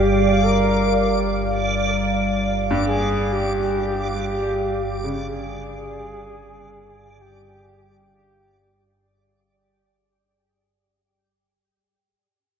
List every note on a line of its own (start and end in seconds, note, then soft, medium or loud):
0.00 9.23 G1 medium
0.00 9.23 G2 medium
0.00 9.14 G3 medium
0.00 0.43 G4 medium
0.00 9.13 D5 medium
0.00 9.15 D5 medium
0.00 9.13 F5 medium
0.42 1.14 A#4 medium
2.71 8.52 G2 medium
2.86 3.34 G#4 loud
3.32 4.29 G4 loud
4.30 4.98 G4 medium
5.04 10.85 C#3 medium
5.27 7.23 G#4 loud
7.21 8.14 G4 loud
8.15 8.84 G4 medium